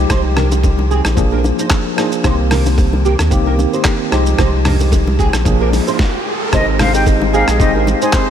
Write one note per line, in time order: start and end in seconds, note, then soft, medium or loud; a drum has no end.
0.00 0.69 F3 medium
0.00 0.69 G#3 medium
0.00 0.70 D#4 medium
0.00 0.70 G4 loud
0.10 1.01 C2 loud
0.10 0.19 D#4 medium
0.10 0.19 C5 loud
0.10 kick loud
0.10 cross-stick medium
0.10 low conga medium
0.10 shaker medium
0.37 0.46 D4 medium
0.37 0.46 A#4 medium
0.37 cross-stick medium
0.37 low bongo medium
0.37 low conga medium
0.37 shaker soft
0.51 high bongo medium
0.51 low bongo medium
0.51 shaker medium
0.63 kick loud
0.63 high bongo medium
0.63 shaker medium
0.79 low bongo medium
0.91 1.00 C4 medium
0.91 0.99 G#4 medium
0.91 shaker medium
1.05 1.15 A#1 medium
1.05 cross-stick medium
1.05 high bongo medium
1.05 shaker medium
1.16 1.52 A#1 loud
1.16 1.80 F3 medium
1.16 1.81 A#3 medium
1.16 1.81 D4 medium
1.16 1.82 G#4 loud
1.16 kick loud
1.16 low conga medium
1.16 shaker medium
1.32 1.40 D4 medium
1.32 1.39 A#4 medium
1.44 low bongo medium
1.44 shaker medium
1.59 1.67 D#4 medium
1.59 1.66 C5 medium
1.59 shaker medium
1.70 kick medium
1.70 cross-stick loud
1.70 clap loud
1.70 high bongo medium
1.70 shaker medium
1.96 2.18 F3 medium
1.96 2.19 A#3 medium
1.96 2.19 D4 medium
1.96 2.07 D#4 medium
1.96 2.20 G#4 medium
1.96 2.07 C5 medium
1.96 cross-stick loud
1.96 shaker medium
2.12 shaker medium
2.23 3.15 C2 loud
2.23 3.08 D#3 medium
2.23 3.08 A#3 medium
2.23 3.09 C4 medium
2.23 2.34 D#4 medium
2.23 3.09 G4 medium
2.23 2.33 C5 loud
2.23 kick loud
2.23 cross-stick medium
2.23 low conga medium
2.23 shaker medium
2.51 2.61 D4 medium
2.51 2.60 A#4 medium
2.51 cross-stick medium
2.51 open hi-hat soft
2.51 low bongo medium
2.51 low conga medium
2.51 shaker soft
2.66 high bongo medium
2.66 low bongo medium
2.66 shaker medium
2.78 kick loud
2.78 high bongo medium
2.78 shaker medium
2.93 low bongo medium
3.05 3.14 A#3 medium
3.05 3.14 G4 medium
3.05 shaker medium
3.19 3.29 D#2 medium
3.19 cross-stick medium
3.19 high bongo medium
3.19 shaker medium
3.30 3.66 C2 loud
3.30 3.95 D#3 medium
3.30 3.95 A#3 medium
3.30 3.96 C4 medium
3.30 3.96 G4 loud
3.30 kick loud
3.30 low conga medium
3.30 shaker medium
3.46 3.54 D4 medium
3.46 3.54 A#4 medium
3.59 low bongo medium
3.59 shaker medium
3.73 3.81 D#4 medium
3.73 3.80 C5 medium
3.73 shaker medium
3.84 kick loud
3.84 cross-stick loud
3.84 clap loud
3.84 high bongo medium
3.84 shaker medium
4.10 4.34 C2 loud
4.10 4.97 F3 medium
4.10 4.98 G#3 medium
4.10 4.98 D#4 medium
4.10 4.21 D#4 medium
4.10 4.99 G4 loud
4.10 4.21 C5 medium
4.10 cross-stick loud
4.10 shaker medium
4.26 shaker medium
4.38 5.30 C2 loud
4.38 4.48 D#4 medium
4.38 4.48 C5 loud
4.38 kick loud
4.38 cross-stick loud
4.38 riser medium
4.38 low conga medium
4.38 shaker medium
4.65 4.75 D4 medium
4.65 4.74 A#4 medium
4.65 cross-stick medium
4.65 mid tom medium
4.65 open hi-hat soft
4.65 low bongo medium
4.65 low conga medium
4.65 shaker soft
4.80 high bongo medium
4.80 low bongo medium
4.80 shaker medium
4.92 kick loud
4.92 high bongo medium
4.92 shaker medium
5.07 low bongo medium
5.19 5.28 C4 medium
5.19 5.28 G#4 medium
5.19 kick medium
5.19 shaker medium
5.33 5.44 A#1 medium
5.33 cross-stick loud
5.33 high bongo medium
5.33 shaker medium
5.44 5.80 A#1 loud
5.44 5.99 F3 medium
5.44 5.99 A#3 medium
5.44 5.99 D4 medium
5.44 6.00 G#4 loud
5.44 kick loud
5.44 low conga medium
5.44 shaker medium
5.61 5.68 D4 medium
5.61 5.68 A#4 medium
5.73 open hi-hat medium
5.73 low bongo medium
5.73 shaker medium
5.87 5.95 D#4 medium
5.87 5.95 C5 medium
5.87 shaker medium
5.99 kick loud
5.99 snare medium
6.51 7.44 G#1 loud
6.51 6.84 G#3 medium
6.51 6.84 C4 medium
6.51 6.85 D#4 medium
6.51 6.62 D#4 medium
6.51 6.85 G4 medium
6.51 6.62 C5 loud
6.51 6.85 C5 medium
6.51 6.66 D#5 loud
6.51 kick loud
6.51 cross-stick loud
6.51 low conga medium
6.51 shaker medium
6.79 6.91 C4 medium
6.79 6.89 D4 medium
6.79 6.91 G#4 medium
6.79 6.89 A#4 medium
6.79 6.91 C5 medium
6.79 6.92 F5 medium
6.79 cross-stick loud
6.79 open hi-hat soft
6.79 low bongo medium
6.79 low conga medium
6.79 shaker soft
6.93 7.46 G#3 medium
6.93 7.46 C4 medium
6.93 7.47 D#4 medium
6.93 7.47 G4 medium
6.93 7.47 C5 medium
6.93 7.05 G5 medium
6.93 high bongo medium
6.93 shaker medium
7.06 kick loud
7.06 high bongo medium
7.06 shaker medium
7.22 low bongo medium
7.33 7.45 A#3 medium
7.33 7.43 C4 medium
7.33 7.45 D#4 medium
7.33 7.45 G4 medium
7.33 7.42 G#4 medium
7.33 7.45 A#4 medium
7.33 7.46 F5 medium
7.33 shaker medium
7.48 7.58 A#1 medium
7.48 7.57 G#3 medium
7.48 7.57 C4 medium
7.48 7.57 D#4 medium
7.48 7.57 G#4 medium
7.48 cross-stick medium
7.48 shaker medium
7.59 7.94 G#1 loud
7.59 7.72 G3 medium
7.59 8.30 G#3 medium
7.59 8.30 C4 medium
7.59 7.72 C4 medium
7.59 7.72 D#4 medium
7.59 8.30 D#4 medium
7.59 7.72 G4 loud
7.59 8.30 G4 medium
7.59 8.30 C5 medium
7.59 7.73 D#5 medium
7.59 kick loud
7.59 low conga medium
7.59 shaker medium
7.75 7.83 D4 medium
7.75 7.82 A#4 medium
7.87 low bongo medium
7.87 shaker medium
8.01 8.11 G#3 medium
8.01 8.11 C4 medium
8.01 8.11 D#4 medium
8.01 8.09 D#4 medium
8.01 8.11 G#4 medium
8.01 8.09 C5 medium
8.01 8.12 G#5 medium
8.01 shaker medium
8.13 8.30 C4 loud
8.13 8.30 G#4 loud
8.13 8.30 C5 loud
8.13 kick loud
8.13 cross-stick loud
8.13 clap loud
8.13 high bongo medium
8.13 shaker medium